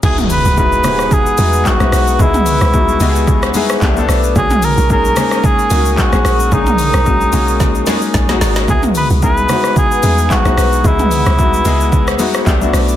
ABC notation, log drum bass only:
X:1
M:4/4
L:1/16
Q:"Swing 16ths" 1/4=111
K:C#dor
V:1 name="Log drum bass" clef=bass
C,,3 C,,3 z4 E,,2 z B,,, B,,,2 | C,,3 C,,3 C,,4 z2 =C,,2 B,,,2 | B,,,3 B,,,3 z4 C,,2 z A,,, A,,,2 | B,,,3 B,,,3 B,,,4 z2 A,,,2 G,,,2 |
C,,3 C,,3 z4 E,,2 z B,,, B,,,2 | C,,3 C,,3 C,,4 z2 =C,,2 B,,,2 |]